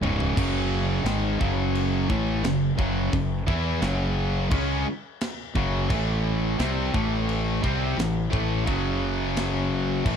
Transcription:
0.02 C#1 C#2 G#2 C#3, mid tom
0.20 floor tom
0.37 F#1 F#2 C#3 F#3, kick, crash, china
1.04 G#1 G#2 D#3 G#3, snare, china
1.40 F#1 F#2 C#3 F#3, kick
1.75 china
2.09 A1 A2 E3 A3, kick
2.43 F#1 F#2 C#3, snare, china
2.78 F#1 F#2 C#3 F#3, kick
3.13 F#1 F#2 C#3, kick, china
3.47 E2 E3 B3 E4, kick
3.81 F#1 F#2 C#3 F#3, snare, china
4.50 C#2 C#3 G#3 C#4, kick, china
5.21 snare, china
5.55 F#1 F#2 C#3 F#3, kick
5.88 A1 A2 E3 A3, kick, china
6.58 C2 C3 G3 C4, snare, china
6.93 A1 A2 E3 A3, kick
7.29 china
7.63 C2 C3 G3 C4, kick
7.97 A1 A2 E3, snare, china
8.30 A1 A2 E3 A3, kick
8.65 F#1 F#2 C#3 F#3, kick, china
9.37 snare, china
10.04 A1 A2 E3 A3, kick, china

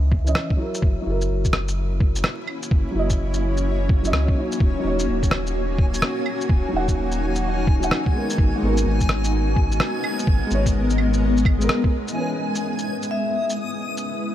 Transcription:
Already playing: C#2 E3 C#4 D#5
0.12 kick
0.25 E3 C#4, shaker
0.29 D#5
0.35 cross-stick
0.50 kick
0.57 F#3 E4
0.61 A#4
0.74 shaker
0.82 F#1 A#3, kick
0.87 C#4
0.92 E4
1.02 F#3 E4
1.06 F#1 A#4
1.21 shaker
1.30 F#1
1.38 C#5
1.45 F#4, kick, shaker
1.53 cross-stick
1.68 shaker
2.00 kick
2.16 shaker
2.24 cross-stick
2.47 claves
2.63 shaker
2.71 F#1, kick
2.91 F#1 F#3
2.95 E4 D#5
3.10 kick, shaker
3.18 F#1
3.34 shaker
3.57 shaker
3.89 kick
4.03 F#3 E4, shaker
4.07 D#5
4.13 C#2, cross-stick
4.28 kick
4.35 F#3 D#4 C#5
4.52 shaker
4.60 D#1 G#5, kick
4.79 F#3 D#4
4.84 D#1 C#5
4.99 shaker
5.08 D#1
5.23 kick, shaker
5.31 cross-stick
5.47 shaker
5.79 kick
5.94 shaker
6.02 cross-stick
6.26 claves
6.41 shaker
6.49 D#1, kick
6.68 F#3
6.73 D#1 D#4 F#5
6.88 kick, shaker
6.96 D#1
7.12 shaker
7.35 shaker
7.67 kick
7.80 F#3 D#4, shaker
7.84 F#5
7.91 cross-stick
8.06 kick
8.13 G#3 B3
8.17 A#4
8.30 shaker
8.38 G#1 G#3, kick
8.48 B3
8.57 G#3 B3 A#4
8.62 G#1 A#4
8.77 shaker
8.86 G#1
9.01 kick, shaker
9.07 D#5, cross-stick
9.24 shaker
9.56 kick
9.72 shaker
9.80 cross-stick
10.04 claves
10.19 shaker
10.27 G#1, kick
10.47 G#3
10.51 G#1 B3 C#5, shaker
10.66 kick, shaker
10.74 G#1
10.90 shaker
10.98 claves
11.14 shaker
11.37 shaker
11.45 kick, claves
11.59 G#3 B3, shaker
11.63 A#4
11.69 cross-stick
11.82 G#3 B3 A#4, kick
12.08 shaker
12.12 E3
12.16 C#4 B4 D#6
12.37 C#4
12.55 shaker
12.60 E4 E5
12.78 B4, shaker
13.02 shaker
13.11 E5
13.50 shaker
13.97 shaker

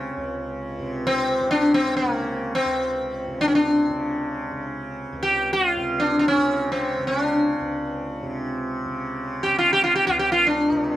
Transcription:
Already playing: C#2 C3 C#3 C#4
0.17 C#2
0.79 C3
1.07 C4
1.41 C#3
1.51 D4
1.74 C4
1.97 A#3
2.04 C#3
2.55 C4
2.65 C#2
3.28 C3
3.41 D4
3.48 C#4
3.55 D4
3.90 C#3
4.51 C#3
5.12 C#2
5.23 G4
5.53 F4
5.76 C3
6.00 D4
6.19 D4
6.28 C#4
6.38 C#3
6.72 C4
6.98 C#3
7.07 D4
7.61 C#2
8.22 C3
8.85 C#3
9.43 C#3 G4
9.59 F4
9.73 G4
9.84 F4
9.96 G4
10.07 C#2 F4
10.19 G4
10.32 F4
10.47 D4
10.72 C3

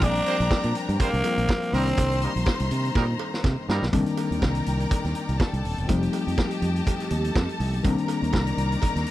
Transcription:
Already playing: F3 G3 A#3 C4 D4 A#4 C5 G5 A#5
0.02 A#1 D4, kick, closed hi-hat, cowbell
0.15 closed hi-hat
0.26 G3 C4 F4 C5, closed hi-hat
0.40 A#1, closed hi-hat
0.51 kick, snare, cowbell
0.63 A#2, closed hi-hat
0.75 closed hi-hat
0.89 G2, closed hi-hat
1.00 G3 A#3 C4 F4 C5, kick, closed hi-hat, cowbell
1.13 C2, closed hi-hat
1.24 F3 G3 A#3 C4 F4, closed hi-hat, cowbell
1.38 A#1, closed hi-hat
1.49 kick, snare, cowbell
1.63 closed hi-hat
1.72 C2 D#3 G3 A#3 C4 D4 D#4 A#4 C5 A#5 C6, open hi-hat
1.87 closed hi-hat
1.98 C2, kick, closed hi-hat, cowbell
2.11 closed hi-hat
2.22 G3 A#3 D#4 A#4, closed hi-hat
2.36 A#1, closed hi-hat
2.46 kick, snare, cowbell
2.60 C2, closed hi-hat
2.71 C3, closed hi-hat
2.85 closed hi-hat
2.95 A#2 G3 A#3 D#4 A#4, kick, snare, cowbell
3.19 cowbell
3.34 snare
3.44 C3, kick, snare, cowbell
3.69 G2 G3 A#3 D#4 A#4, snare
3.82 B1, snare
3.91 C2 D3 D#3 G3 A#3 C4 D4 A#4 D5 G5 A#5, kick, closed hi-hat, cowbell
3.97 D#3
4.06 closed hi-hat
4.17 closed hi-hat, cowbell
4.31 D#2, closed hi-hat
4.42 C2, kick, snare, cowbell
4.55 closed hi-hat
4.66 C2, closed hi-hat
4.80 closed hi-hat
4.91 kick, closed hi-hat, cowbell
5.05 D#2, snare, closed hi-hat
5.15 closed hi-hat
5.29 C2, closed hi-hat
5.40 A4 A5, kick, snare, cowbell
5.53 C2, closed hi-hat
5.64 D#1, open hi-hat
5.78 E1, closed hi-hat
5.87 F1 F3 G3 A3 C4 D#4 G4 D#5 G5 A5, kick, closed hi-hat, cowbell
6.03 closed hi-hat
6.13 closed hi-hat, cowbell
6.27 F2, closed hi-hat
6.38 kick, snare, cowbell
6.51 closed hi-hat
6.62 F2, closed hi-hat
6.76 closed hi-hat
6.87 kick, closed hi-hat, cowbell
7.00 snare, closed hi-hat
7.10 D#2 A4 A5, closed hi-hat
7.25 closed hi-hat
7.36 F2, kick, snare, cowbell
7.49 closed hi-hat
7.60 C2, open hi-hat
7.74 B1, closed hi-hat
7.83 C2 D#3 G3 A#3 C4 D4 A#4 D5 A#5, kick, closed hi-hat, cowbell
7.98 closed hi-hat
8.08 closed hi-hat, cowbell
8.22 D#2, closed hi-hat
8.33 C2, kick, snare, cowbell
8.47 closed hi-hat
8.57 C2, closed hi-hat
8.72 closed hi-hat
8.82 kick, closed hi-hat, cowbell
8.96 D#2, snare, closed hi-hat
9.06 closed hi-hat

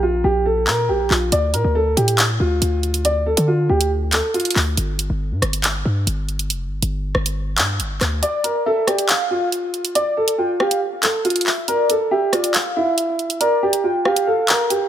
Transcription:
Already playing: A#1
0.03 F4
0.24 A#1 G4
0.46 A4
0.67 A#2 A#4, clap
0.89 A#1 G4
1.10 A#1 F4, clap
1.32 D2 D5, closed hi-hat
1.54 A2 A#4, closed hi-hat
1.64 D2
1.75 A4
1.97 A2 G4, closed hi-hat
2.08 closed hi-hat
2.18 clap, closed hi-hat
2.40 D2 F4
2.62 D2, closed hi-hat
2.83 closed hi-hat
2.94 closed hi-hat
3.05 D5, closed hi-hat
3.26 A4
3.37 D3, closed hi-hat
3.48 F4
3.69 D2 G4
3.81 closed hi-hat
4.13 A4, clap, closed hi-hat
4.34 F4, closed hi-hat
4.40 closed hi-hat
4.45 closed hi-hat
4.51 closed hi-hat
4.56 D2, clap, open hi-hat
4.77 G1, closed hi-hat
4.99 closed hi-hat
5.10 G1
5.31 G2
5.42 G1, cross-stick, closed hi-hat
5.53 closed hi-hat
5.64 clap, closed hi-hat
5.85 G2
6.07 G1, closed hi-hat
6.29 closed hi-hat
6.39 closed hi-hat
6.50 F1, closed hi-hat
6.66 G1
6.82 G1, closed hi-hat
7.15 G1, cross-stick
7.26 closed hi-hat
7.58 G2, clap, closed hi-hat
7.80 G1, closed hi-hat
8.01 D2, cross-stick, clap, closed hi-hat
8.22 D5, closed hi-hat
8.44 A#4, closed hi-hat
8.66 A4 E5
8.87 G4 D5, cross-stick, closed hi-hat
8.99 closed hi-hat
9.09 F5, clap, closed hi-hat
9.31 F4
9.52 closed hi-hat
9.74 closed hi-hat
9.85 closed hi-hat
9.95 D5, closed hi-hat
10.17 A4
10.28 closed hi-hat
10.38 F4 G5
10.60 G4 F5, cross-stick
10.71 closed hi-hat
11.03 A4, clap, closed hi-hat
11.25 F4, closed hi-hat
11.30 closed hi-hat
11.36 closed hi-hat
11.41 closed hi-hat
11.46 E5, clap, open hi-hat
11.68 A#4 D5, closed hi-hat
11.90 A4, closed hi-hat
12.11 G4 E5
12.33 F4 D5, cross-stick, closed hi-hat
12.44 closed hi-hat
12.54 clap, closed hi-hat
12.76 E4
12.98 closed hi-hat
13.19 closed hi-hat
13.30 closed hi-hat
13.40 A#4 D5, closed hi-hat
13.63 G4
13.73 closed hi-hat
13.84 F4 G5
14.05 G4 F5, cross-stick
14.16 closed hi-hat
14.27 A4
14.48 A#4, clap, closed hi-hat
14.70 G4, closed hi-hat

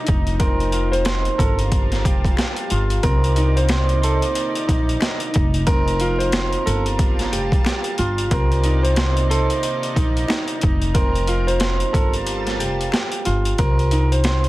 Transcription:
Already playing: C4 D#4 C5
0.07 F1 F3 D#4 A#4, kick, closed hi-hat
0.27 closed hi-hat
0.39 C4 A#4, kick, closed hi-hat
0.60 closed hi-hat
0.72 F4, closed hi-hat
0.92 C5, closed hi-hat
1.05 C5, finger snap, snare, closed hi-hat
1.25 closed hi-hat
1.38 G1 G3 F4 A4 A#4 A5, kick, closed hi-hat
1.59 closed hi-hat
1.72 kick, closed hi-hat
1.92 snare, closed hi-hat
2.04 F1 G4, kick, closed hi-hat
2.25 kick, closed hi-hat
2.37 G4, finger snap, snare, closed hi-hat
2.56 closed hi-hat
2.70 G1 F4, closed hi-hat
2.90 closed hi-hat
3.02 C2 C3 A#3 C4 D#4 A#4 D5, kick, closed hi-hat
3.24 closed hi-hat
3.36 D#4, closed hi-hat
3.56 C5, closed hi-hat
3.69 C5, finger snap, snare, closed hi-hat
3.89 closed hi-hat
4.02 A4 C5, closed hi-hat
4.22 closed hi-hat
4.35 closed hi-hat
4.55 closed hi-hat
4.68 A#1 D#4, kick, closed hi-hat
4.89 closed hi-hat
5.00 D#4, finger snap, snare, closed hi-hat
5.20 closed hi-hat
5.34 F1 F3 D#4 A#4, kick, closed hi-hat
5.54 closed hi-hat
5.67 C4 A#4, kick, closed hi-hat
5.88 closed hi-hat
6.00 F4, closed hi-hat
6.18 C5, closed hi-hat
6.32 C5, finger snap, snare, closed hi-hat
6.53 closed hi-hat
6.64 G1 G3 F4 A4 A#4 A5, closed hi-hat
6.86 closed hi-hat
6.99 kick, closed hi-hat
7.19 snare, closed hi-hat
7.31 F1 G4, closed hi-hat
7.52 kick, closed hi-hat
7.65 G4, finger snap, snare, closed hi-hat
7.84 closed hi-hat
7.98 G1 F4, closed hi-hat
8.18 closed hi-hat
8.30 C2 C3 A#3 C4 D#4 A#4 D5, kick, closed hi-hat
8.52 closed hi-hat
8.64 D#4, closed hi-hat
8.83 C5, closed hi-hat
8.96 C5, finger snap, snare, closed hi-hat
9.17 closed hi-hat
9.30 A4 C5, closed hi-hat
9.50 closed hi-hat
9.63 closed hi-hat
9.83 closed hi-hat
9.95 A#1 D#4, kick, closed hi-hat
10.17 closed hi-hat
10.28 D#4, finger snap, snare, closed hi-hat
10.48 closed hi-hat
10.61 F1 F3 D#4 A#4, kick, closed hi-hat
10.82 closed hi-hat
10.94 C4 A#4, kick, closed hi-hat
11.15 closed hi-hat
11.27 F4, closed hi-hat
11.47 C5, closed hi-hat
11.60 C5, finger snap, snare, closed hi-hat
11.80 closed hi-hat
11.93 G1 G3 F4 A4 A#4 A5, kick, closed hi-hat
12.14 closed hi-hat
12.27 closed hi-hat
12.47 snare, closed hi-hat
12.59 F1 G4, closed hi-hat
12.81 closed hi-hat
12.92 G4, finger snap, snare, closed hi-hat
13.12 closed hi-hat
13.25 G1 F4, closed hi-hat
13.45 closed hi-hat
13.58 C2 C4 A#4, kick, closed hi-hat
13.79 closed hi-hat
13.91 D#4, closed hi-hat
14.12 C5, closed hi-hat
14.24 C5, snare, closed hi-hat
14.44 closed hi-hat

